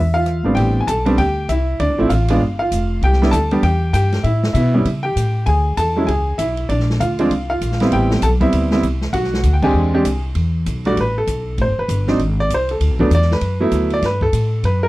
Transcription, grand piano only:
0.00 0.42 E5 medium
0.14 0.55 F4 medium
0.14 0.54 F5 loud
0.44 0.85 A2 medium
0.44 0.85 G3 medium
0.44 0.85 B3 medium
0.44 0.85 C4 medium
0.44 0.85 D4 medium
0.55 0.80 G4 medium
0.55 0.79 G5 medium
0.81 0.87 G#5 medium
0.87 1.17 A4 medium
0.87 1.19 A5 medium
1.06 1.16 G3 medium
1.06 1.17 B3 medium
1.06 1.17 C4 medium
1.06 1.17 D4 medium
1.18 1.48 G4 medium
1.18 1.49 G5 medium
1.49 1.79 E4 medium
1.49 1.80 E5 medium
1.80 2.09 D4 medium
1.80 2.08 D5 medium
1.98 2.09 F3 medium
1.98 2.09 A3 medium
1.98 2.09 C4 medium
1.98 2.10 E4 medium
2.09 2.29 F4 medium
2.09 2.55 F5 medium
2.30 2.40 G#3 medium
2.30 2.40 B3 medium
2.30 2.40 D4 medium
2.30 2.40 F4 medium
2.59 3.00 F4 medium
2.59 3.03 F5 medium
3.04 3.32 G4 medium
3.04 3.31 G5 medium
3.22 3.32 G3 medium
3.22 3.32 B3 medium
3.22 3.32 D4 medium
3.22 3.32 E4 medium
3.31 3.62 A4 medium
3.31 3.60 A5 loud
3.52 3.62 G3 medium
3.52 3.62 B3 medium
3.52 3.62 D4 medium
3.52 3.62 G4 medium
3.63 3.92 G4 medium
3.63 3.92 G5 medium
3.93 4.23 G4 medium
3.93 4.22 G5 medium
4.23 4.54 E4 medium
4.23 4.52 E5 medium
4.53 4.73 E4 medium
4.53 5.00 E5 medium
4.74 4.85 G3 medium
4.74 4.85 B3 medium
4.74 4.85 C#4 medium
4.74 4.85 E4 medium
5.03 5.44 G4 medium
5.03 5.43 G5 medium
5.46 5.76 G#4 medium
5.46 5.75 G#5 medium
5.77 6.07 A4 medium
5.77 6.09 A5 medium
5.96 6.07 F#3 medium
5.96 6.07 G#3 medium
5.96 6.08 C#4 medium
5.96 6.07 E4 medium
6.07 6.37 G#4 medium
6.07 6.39 G#5 medium
6.38 6.68 E4 medium
6.38 6.67 E5 medium
6.69 6.99 D4 medium
6.69 7.00 D5 medium
7.00 7.47 F4 medium
7.00 7.48 F5 medium
7.19 7.30 F3 medium
7.19 7.29 G#3 medium
7.19 7.30 C4 medium
7.19 7.30 D4 medium
7.50 7.90 F4 medium
7.50 7.93 F5 medium
7.81 8.20 G3 medium
7.81 8.20 B3 medium
7.81 8.21 C4 medium
7.81 8.21 E4 medium
7.93 8.21 G4 medium
7.93 8.23 G5 medium
8.23 8.29 A4 medium
8.23 8.28 A5 loud
8.40 8.69 G3 medium
8.40 8.69 B3 medium
8.40 8.69 C4 medium
8.40 8.70 E4 medium
8.40 9.16 E5 medium
8.72 8.82 G3 medium
8.72 8.82 B3 medium
8.72 8.82 C4 medium
8.72 8.83 E4 medium
9.13 9.52 F#4 medium
9.13 9.55 F#5 medium
9.53 9.62 G5 medium
9.63 9.91 G#3 medium
9.63 9.92 C4 medium
9.63 9.92 D4 medium
9.63 9.92 G4 medium
9.63 10.21 G#4 medium
9.63 10.20 G#5 medium
9.94 10.04 G#3 medium
9.94 10.04 C4 medium
9.94 10.04 D4 medium
9.94 10.05 G4 medium
10.86 10.96 G3 medium
10.86 10.96 A3 medium
10.86 10.96 D4 medium
10.86 10.96 F#4 medium
10.86 10.97 D5 medium
11.01 11.17 B4 medium
11.18 11.56 A4 medium
11.62 11.78 C5 medium
11.79 12.06 B4 medium
12.08 12.18 F#3 medium
12.08 12.18 C4 medium
12.08 12.18 D4 medium
12.08 12.19 D#4 medium
12.40 12.50 D5 medium
12.54 12.70 C5 medium
12.71 13.09 A4 medium
13.00 13.10 F#3 medium
13.00 13.10 A3 medium
13.00 13.10 B3 medium
13.00 13.10 D4 medium
13.15 13.31 D5 loud
13.33 13.59 B4 medium
13.60 14.00 F#3 medium
13.60 14.00 A3 medium
13.60 14.00 B3 medium
13.60 14.00 E4 medium
13.94 14.03 D5 medium
14.06 14.22 B4 medium
14.22 14.61 A4 medium
14.65 14.82 B4 medium
14.83 14.88 A#4 medium

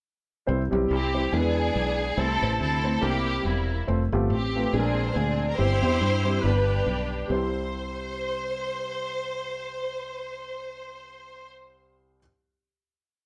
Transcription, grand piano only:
0.47 1.10 C3 medium
0.47 0.61 G3 medium
0.47 0.61 C4 medium
0.47 0.61 E4 medium
0.47 0.61 C5 medium
0.71 0.92 G3 medium
0.71 0.92 C4 medium
0.71 0.93 E4 medium
0.71 0.93 G4 medium
1.14 1.32 G3 medium
1.14 1.32 C4 medium
1.14 1.31 E4 medium
1.14 1.33 C5 medium
1.32 1.96 E3 medium
1.32 2.03 G#3 medium
1.32 2.03 D4 medium
1.32 2.03 E4 medium
1.32 1.39 A#4 medium
1.38 2.06 B4 medium
2.17 2.80 C3 medium
2.17 2.31 A3 medium
2.17 2.31 C4 medium
2.17 2.31 E4 medium
2.17 2.31 C5 medium
2.42 2.63 A3 medium
2.42 2.63 C4 medium
2.42 2.63 E4 medium
2.42 2.63 C5 medium
2.83 3.02 A3 medium
2.83 3.00 C4 medium
2.83 3.02 E4 medium
2.83 3.03 C5 medium
3.02 3.65 C3 medium
3.02 3.73 G3 medium
3.02 3.73 C4 medium
3.02 3.08 D4 soft
3.02 3.73 A#4 medium
3.08 3.76 E4 medium
3.87 4.01 A3 medium
3.87 4.01 C4 medium
3.87 4.01 F4 medium
3.87 4.01 C5 medium
4.12 4.33 A3 medium
4.12 4.33 C4 medium
4.12 4.34 F4 medium
4.12 4.34 G4 medium
4.55 4.73 A3 medium
4.55 4.72 C4 medium
4.55 4.73 F4 medium
4.55 4.74 B4 medium
4.73 5.37 A#2 medium
4.73 5.44 G#3 medium
4.73 5.44 C4 medium
4.73 5.44 D4 medium
4.73 4.79 G#4 medium
4.79 5.47 A#4 medium
5.58 6.22 G2 medium
5.58 5.72 G3 medium
5.58 5.72 C4 medium
5.58 5.72 E4 medium
5.58 5.72 C5 medium
5.82 6.04 G3 medium
5.82 6.04 C4 medium
5.82 6.04 E4 medium
5.82 6.04 G4 medium
6.25 6.41 G3 medium
6.25 6.44 C4 medium
6.25 6.44 E4 medium
6.25 6.44 G4 medium
6.43 7.07 G2 medium
6.43 7.15 G3 medium
6.43 7.15 B3 medium
6.43 7.15 D4 medium
6.43 7.15 B4 medium
7.28 12.19 C2 medium
7.28 12.17 G3 medium
7.28 12.18 C4 medium
7.28 12.19 E4 medium
7.32 12.20 C5 medium

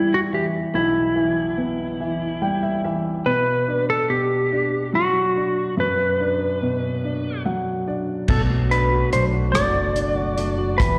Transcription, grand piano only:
0.00 0.71 E2 soft
0.00 0.33 E3 soft
0.00 1.54 G3 soft
0.00 0.70 B3 soft
0.33 1.14 E3 soft
0.74 3.22 B1 soft
1.16 1.99 E3 soft
1.58 3.22 B3 soft
2.00 2.83 E3 soft
2.42 3.23 G3 soft
2.42 2.62 G5 medium
2.63 2.83 E5 medium
2.85 3.25 E3 soft
2.85 3.23 E5 medium
3.26 4.08 B2 soft
3.68 4.51 D4 soft
4.09 5.73 B2 soft
4.52 5.35 D4 soft
4.93 6.57 F#3 soft
5.36 6.19 D4 soft
5.77 8.25 F#2 soft
6.20 7.03 D4 soft
6.62 8.25 B2 soft
7.04 7.86 D4 soft
7.46 8.27 F#3 soft
7.46 7.84 F#5 medium
7.88 8.28 D4 soft
7.88 8.26 D5 medium
8.28 10.76 B2 soft
8.50 9.52 F#3 soft
8.71 9.10 D4 soft
8.92 9.32 F#4 soft
9.12 9.93 D4 soft
9.33 9.73 F#4 soft
9.53 10.75 F#3 medium
9.75 10.14 F#4 soft
9.95 10.35 D4 soft
10.16 10.56 F#4 medium
10.37 10.78 D4 soft
10.58 10.78 F#4 soft
10.79 10.99 E3 soft

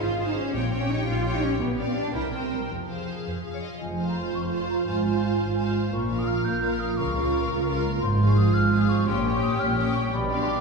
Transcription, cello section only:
0.01 0.27 F4 medium
0.28 0.36 D#4 medium
0.36 0.53 C#4 medium
0.53 0.80 C4 medium
0.80 0.89 C#4 medium
0.89 1.07 D#4 medium
1.07 1.33 F4 medium
1.34 1.43 D#4 medium
1.43 1.60 C#4 medium
1.60 1.86 B3 medium
1.88 1.96 C4 medium
1.96 2.14 D4 medium
2.14 2.22 E4 medium
2.33 2.51 C4 medium
2.51 2.58 G3 soft
2.70 3.61 F3 soft
3.81 4.28 F2 soft
4.35 4.81 F2 soft
4.87 5.34 G#2 soft
5.40 5.87 G#2 soft
5.93 6.39 A#2 soft
6.45 6.92 A#2 soft
6.98 7.44 C#3 soft
7.50 7.96 C#3 soft
8.02 8.48 G#2 medium
8.54 9.00 G#2 medium
9.06 9.53 A#2 medium
9.59 10.06 A#2 medium
10.13 10.61 B2 medium

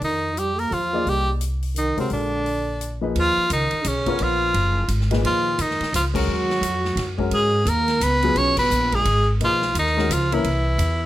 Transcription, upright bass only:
0.01 0.68 F2 medium
0.71 1.04 E2 medium
1.06 1.94 C2 medium
1.97 2.10 C2 medium
2.11 3.11 A#1 medium
3.15 3.36 D#2 medium
3.37 muted upright bass stroke soft
3.50 3.70 C#2 loud
3.72 muted upright bass stroke soft
3.85 4.19 B1 medium
4.20 4.54 A#1 medium
4.54 4.88 F#1 loud
4.88 5.23 G#1 medium
5.23 5.58 D#2 medium
5.58 5.79 F2 medium
5.80 muted upright bass stroke soft
5.93 6.26 C#2 medium
6.27 6.61 D#2 medium
6.61 6.95 F2 medium
6.96 7.30 F#2 medium
7.31 7.65 G#2 medium
7.65 8.00 D#2 medium
8.01 8.35 C#2 medium
8.35 8.70 B1 medium
8.70 9.04 A#1 medium
9.05 9.39 G#1 medium
9.40 9.74 B1 medium
9.75 10.09 D#2 loud
10.09 10.43 C#2 medium
10.44 10.78 C2 medium
10.78 11.06 E2 loud

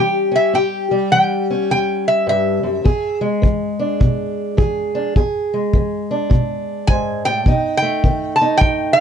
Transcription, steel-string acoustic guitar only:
0.00 0.50 E3 medium
0.00 0.90 G3 medium
0.00 0.30 C#4 soft
0.00 0.52 G4 medium
0.32 0.51 C#4 medium
0.53 1.07 A2 medium
0.53 2.82 G4 medium
0.91 2.85 G3 medium
1.12 1.65 E3 medium
1.50 2.84 C#4 medium
1.71 2.24 E2 medium
2.27 2.63 G2 medium
2.63 2.84 F#2 medium
2.84 3.38 E2 medium
2.84 4.56 G#4 medium
3.21 5.13 G#3 medium
3.42 3.96 E3 medium
3.79 4.94 D4 medium
4.00 4.54 B2 medium
4.57 5.11 E3 medium
4.57 5.13 G#4 medium
4.95 5.13 D4 medium
5.16 5.69 E2 medium
5.16 7.44 G#4 medium
5.54 7.44 G#3 medium
5.75 6.27 E3 medium
6.11 7.44 D4 soft
6.30 6.83 B2 medium
6.89 7.24 G#2 medium
7.26 7.46 A2 medium
7.47 7.99 B2 medium
7.47 8.40 D#4 medium
7.82 9.00 A3 medium
8.05 8.57 D#3 medium
8.41 9.00 D#4 medium
8.62 9.00 F#2 medium

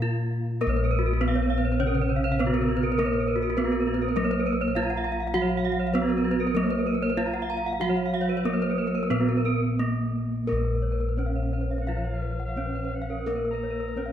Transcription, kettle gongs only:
0.00 1.17 A#2 medium
0.00 0.10 B3 soft
0.62 2.35 A#4 medium
0.67 4.15 A#1 loud
1.21 1.29 B3 soft
2.39 2.47 B3 soft
2.98 4.71 A#4 medium
3.58 3.66 B3 soft
4.16 5.90 F#3 medium
4.75 4.83 B3 soft
5.34 7.13 F#4 medium
5.94 6.02 B3 soft
6.55 8.41 F#3 medium
7.17 7.25 B3 soft
7.80 9.74 F#4 medium
8.45 8.53 B3 medium
9.11 11.13 A#2 medium
9.79 9.87 B3 soft
10.47 12.53 A#4 medium
10.52 14.12 A#1 medium
11.17 11.25 B3 soft
12.56 12.64 B3 soft
13.26 14.12 A#4 medium
13.96 14.04 B3 soft

